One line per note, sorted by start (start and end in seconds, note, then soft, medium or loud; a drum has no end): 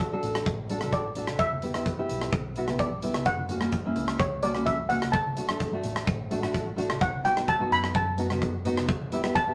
0.00 0.15 D2 loud
0.00 kick medium
0.00 closed hi-hat medium
0.00 low conga medium
0.12 0.47 D4 medium
0.12 0.47 F#4 medium
0.12 0.47 A4 medium
0.23 0.44 A1 medium
0.23 closed hi-hat medium
0.23 low conga medium
0.35 cross-stick medium
0.35 closed hi-hat medium
0.46 1.39 A1 medium
0.46 kick loud
0.46 closed hi-hat medium
0.69 0.77 D4 medium
0.69 0.77 F#4 medium
0.69 0.78 A4 medium
0.69 closed hi-hat medium
0.81 1.03 D4 medium
0.81 1.03 F#4 medium
0.81 1.03 A4 medium
0.81 cross-stick medium
0.81 closed hi-hat medium
0.81 high conga medium
0.92 1.41 D5 medium
0.92 kick medium
0.92 closed hi-hat medium
1.15 1.40 D4 medium
1.15 1.40 F#4 medium
1.15 1.41 A4 medium
1.15 closed hi-hat medium
1.15 low conga medium
1.27 cross-stick medium
1.27 closed hi-hat medium
1.27 high conga medium
1.39 2.01 E2 medium
1.39 1.83 E5 medium
1.39 kick medium
1.39 closed hi-hat medium
1.51 high conga medium
1.62 1.70 B3 medium
1.62 1.70 E4 medium
1.62 1.71 G4 medium
1.62 closed hi-hat medium
1.74 1.89 B3 medium
1.74 1.89 E4 medium
1.74 1.89 G4 medium
1.74 cross-stick medium
1.74 closed hi-hat medium
1.86 kick medium
1.86 closed hi-hat medium
1.86 low conga medium
1.98 2.33 B3 medium
1.98 2.33 E4 medium
1.98 2.34 G4 medium
2.09 2.30 B1 loud
2.09 closed hi-hat medium
2.09 low conga medium
2.21 cross-stick medium
2.21 closed hi-hat medium
2.33 3.26 B1 medium
2.33 kick loud
2.33 closed hi-hat medium
2.56 2.64 B3 medium
2.56 2.64 E4 medium
2.56 2.64 F#4 medium
2.56 closed hi-hat medium
2.68 2.89 B3 medium
2.68 2.90 E4 medium
2.68 2.90 G4 medium
2.68 cross-stick medium
2.68 closed hi-hat medium
2.68 high conga medium
2.79 3.23 D5 medium
2.79 kick medium
2.79 closed hi-hat medium
3.02 3.26 B3 medium
3.02 3.27 E4 medium
3.02 3.27 G4 medium
3.02 closed hi-hat medium
3.02 low conga medium
3.14 cross-stick medium
3.14 closed hi-hat medium
3.14 high conga medium
3.25 3.88 F#2 loud
3.25 3.70 F#5 medium
3.25 kick medium
3.25 closed hi-hat medium
3.37 high conga medium
3.49 3.57 A#3 medium
3.49 3.57 C#4 medium
3.49 3.58 F#4 medium
3.49 closed hi-hat medium
3.49 low conga medium
3.61 3.75 A#3 medium
3.61 3.76 C#4 medium
3.61 3.76 F#4 medium
3.61 cross-stick medium
3.61 closed hi-hat medium
3.72 kick medium
3.72 closed hi-hat medium
3.72 low conga medium
3.85 4.20 A#3 medium
3.85 4.20 C#4 medium
3.85 4.21 E4 medium
3.96 4.17 C#2 medium
3.96 closed hi-hat medium
3.96 low conga medium
4.08 cross-stick medium
4.08 closed hi-hat medium
4.19 5.13 C#2 medium
4.19 4.44 C#5 medium
4.19 kick loud
4.19 closed hi-hat medium
4.43 4.51 A#3 medium
4.43 4.51 C#4 medium
4.43 4.51 F#4 medium
4.43 4.67 D5 medium
4.43 closed hi-hat medium
4.55 4.76 A#3 medium
4.55 4.76 C#4 medium
4.55 4.77 F#4 medium
4.55 cross-stick medium
4.55 closed hi-hat medium
4.55 high conga medium
4.66 4.88 E5 medium
4.66 kick medium
4.66 closed hi-hat medium
4.89 5.13 A#3 medium
4.89 5.14 C#4 medium
4.89 5.14 F#4 medium
4.89 5.14 F#5 medium
4.89 closed hi-hat medium
4.89 high conga medium
4.89 low conga medium
5.02 cross-stick medium
5.02 closed hi-hat medium
5.02 high conga medium
5.12 5.75 D2 loud
5.12 5.79 A5 medium
5.12 kick loud
5.12 closed hi-hat medium
5.26 high conga medium
5.36 5.44 A3 medium
5.36 5.44 D4 medium
5.36 5.45 F#4 medium
5.36 closed hi-hat medium
5.48 5.63 A3 medium
5.48 5.63 D4 medium
5.48 5.64 A4 medium
5.48 cross-stick medium
5.48 closed hi-hat medium
5.60 kick medium
5.60 closed hi-hat medium
5.60 low conga medium
5.72 6.07 A3 medium
5.72 6.08 D4 medium
5.72 6.08 F#4 medium
5.83 6.05 A1 medium
5.83 closed hi-hat medium
5.83 low conga medium
5.96 cross-stick medium
5.96 closed hi-hat medium
6.07 7.01 A1 medium
6.07 kick loud
6.07 closed hi-hat medium
6.31 6.38 A3 medium
6.31 6.38 D4 medium
6.31 6.39 F#4 medium
6.31 closed hi-hat medium
6.42 6.64 A3 medium
6.42 6.64 D4 medium
6.42 6.64 F#4 medium
6.42 cross-stick medium
6.42 closed hi-hat medium
6.54 kick medium
6.54 closed hi-hat medium
6.76 7.01 A3 medium
6.76 7.01 D4 medium
6.76 7.01 F#4 medium
6.76 closed hi-hat medium
6.76 low conga medium
6.90 cross-stick medium
6.90 closed hi-hat medium
6.90 high conga medium
7.01 7.63 B1 loud
7.01 7.23 F#5 medium
7.01 kick loud
7.01 closed hi-hat medium
7.14 high conga medium
7.24 7.32 B3 medium
7.24 7.32 D#4 medium
7.24 7.32 F#4 medium
7.24 7.47 G5 medium
7.24 closed hi-hat medium
7.36 7.50 B3 medium
7.36 7.51 D#4 medium
7.36 7.51 F#4 medium
7.36 cross-stick medium
7.36 closed hi-hat medium
7.48 7.73 A5 loud
7.48 kick medium
7.48 closed hi-hat medium
7.48 low conga medium
7.59 7.95 B3 medium
7.59 7.95 D#4 medium
7.59 7.95 F#4 medium
7.71 7.92 F#2 medium
7.71 7.96 B5 loud
7.71 closed hi-hat medium
7.71 low conga medium
7.84 cross-stick medium
7.84 closed hi-hat medium
7.94 8.88 F#2 loud
7.94 8.62 A5 medium
7.94 kick loud
7.94 closed hi-hat medium
8.18 8.25 B3 medium
8.18 8.26 D#4 medium
8.18 8.26 F#4 medium
8.18 closed hi-hat medium
8.30 8.51 B3 medium
8.30 8.52 D#4 medium
8.30 8.52 F#4 medium
8.30 cross-stick medium
8.30 closed hi-hat medium
8.30 high conga medium
8.42 kick medium
8.42 closed hi-hat medium
8.65 8.89 B3 medium
8.65 8.89 D#4 medium
8.65 8.90 F#4 loud
8.65 closed hi-hat medium
8.65 low conga medium
8.77 cross-stick medium
8.77 closed hi-hat medium
8.77 high conga medium
8.88 9.50 E2 loud
8.88 kick loud
8.88 closed hi-hat medium
9.02 high conga medium
9.12 9.20 B3 medium
9.12 9.20 E4 medium
9.12 9.20 G4 loud
9.12 closed hi-hat medium
9.24 9.38 B3 medium
9.24 9.38 E4 medium
9.24 9.39 G4 medium
9.24 cross-stick medium
9.24 closed hi-hat medium
9.35 9.54 A5 loud
9.35 kick medium
9.35 closed hi-hat medium
9.35 low conga medium
9.47 9.54 B3 medium
9.47 9.54 E4 medium
9.47 9.54 G4 medium